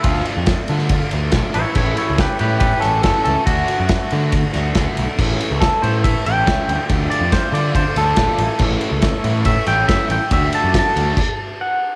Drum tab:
CC |----------------|x---------------|----------------|x---------------|
RD |x-x-x-x-x-x-x-x-|--x-x-x-x-x-x-x-|x-x-x-x-x-x-x-x-|--x-x-x-x-x-x-x-|
SD |----o--o----o---|----o-----o-o---|----o-----o-o---|----o-------o---|
BD |o---o---o---o---|o---o---o---o---|o---o---o---o---|o---o---o---o---|

CC |----------------|x---------------|--------x-------|
RD |x-x-x-x-x-x-x-x-|--x-x-x-x-x-x-x-|x-x-x-x---------|
SD |----o-----o-o---|----o-----o-o---|----o-----------|
BD |o---o---o---o---|o---o---o---o---|o---o---o-------|